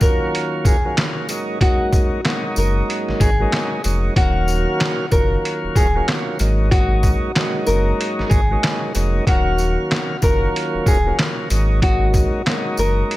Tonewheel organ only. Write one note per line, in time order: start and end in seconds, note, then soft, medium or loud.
0.00 0.76 D#2 medium
0.00 0.76 F#3 medium
0.00 0.77 A#3 medium
0.00 0.77 C#4 medium
0.00 0.77 F4 loud
0.84 0.96 D#2 medium
0.84 0.96 F#3 medium
0.84 0.97 A#3 medium
0.84 0.98 C#4 medium
0.84 0.98 F4 medium
0.97 1.27 D#2 medium
0.97 1.27 F#3 medium
0.97 1.28 A#3 medium
0.97 1.28 C#4 medium
0.97 1.28 F4 medium
1.28 1.58 G#2 medium
1.28 1.59 F#3 medium
1.28 1.59 A#3 medium
1.28 1.59 C#4 medium
1.28 1.60 D#4 medium
1.59 2.20 G#2 loud
1.59 2.20 F#3 medium
1.59 2.21 A#3 medium
1.59 2.21 C#4 medium
1.59 2.21 D#4 medium
2.25 3.29 G#2 medium
2.25 3.30 F#3 medium
2.25 3.30 A#3 medium
2.25 3.30 C#4 medium
2.25 3.30 D#4 loud
3.40 3.81 G#2 medium
3.40 3.81 F#3 medium
3.40 3.82 A#3 medium
3.40 3.82 C#4 medium
3.40 3.82 D#4 loud
3.83 4.14 G#2 medium
3.83 4.14 F#3 medium
3.83 4.14 A#3 medium
3.83 4.15 C#4 medium
3.83 4.15 D#4 medium
4.15 5.05 D#2 loud
4.15 5.06 F#3 medium
4.15 5.06 A#3 medium
4.15 5.06 C#4 medium
4.15 5.07 F5 loud
5.10 5.87 D#2 medium
5.10 5.87 F#3 medium
5.10 5.87 A#3 medium
5.10 5.88 C#4 medium
5.10 5.88 F4 loud
5.95 6.06 D#2 medium
5.95 6.07 F#3 medium
5.95 6.08 A#3 medium
5.95 6.08 C#4 medium
5.95 6.09 F4 loud
6.08 6.38 D#2 medium
6.08 6.38 F#3 medium
6.08 6.38 A#3 medium
6.08 6.38 C#4 medium
6.08 6.39 F4 medium
6.39 6.69 G#2 medium
6.39 6.69 F#3 medium
6.39 6.70 A#3 medium
6.39 6.70 C#4 medium
6.39 6.70 D#4 medium
6.71 7.31 G#2 loud
6.71 7.31 F#3 medium
6.71 7.32 A#3 medium
6.71 7.32 C#4 medium
6.71 7.32 D#4 medium
7.36 8.40 G#2 medium
7.36 8.40 F#3 medium
7.36 8.41 A#3 medium
7.36 8.41 C#4 medium
7.36 8.41 D#4 loud
8.50 8.92 G#2 medium
8.50 8.92 F#3 medium
8.50 8.92 A#3 medium
8.50 8.93 C#4 medium
8.50 8.93 D#4 loud
8.94 9.24 G#2 medium
8.94 9.24 F#3 medium
8.94 9.25 A#3 medium
8.94 9.25 C#4 medium
8.94 9.25 D#4 medium
9.25 10.16 D#2 medium
9.25 10.16 F#3 medium
9.25 10.16 A#3 medium
9.25 10.17 C#4 medium
9.25 10.17 F5 loud
10.21 10.97 D#2 medium
10.21 10.97 F#3 medium
10.21 10.98 A#3 medium
10.21 10.98 C#4 medium
10.21 10.98 F4 loud
11.05 11.17 D#2 medium
11.05 11.18 F#3 medium
11.05 11.19 A#3 medium
11.05 11.19 C#4 medium
11.05 11.20 F4 loud
11.18 11.48 D#2 medium
11.18 11.49 F#3 medium
11.18 11.49 A#3 medium
11.18 11.49 C#4 medium
11.18 11.50 F4 medium
11.49 11.80 G#2 medium
11.49 11.80 F#3 medium
11.49 11.80 A#3 medium
11.49 11.81 C#4 medium
11.49 11.81 D#4 medium
11.81 12.41 G#2 loud
11.81 12.42 F#3 medium
11.81 12.42 A#3 medium
11.81 12.42 C#4 medium
11.81 12.43 D#4 medium
12.46 13.17 G#2 medium
12.46 13.17 F#3 medium
12.46 13.17 A#3 medium
12.46 13.17 C#4 medium
12.46 13.17 D#4 loud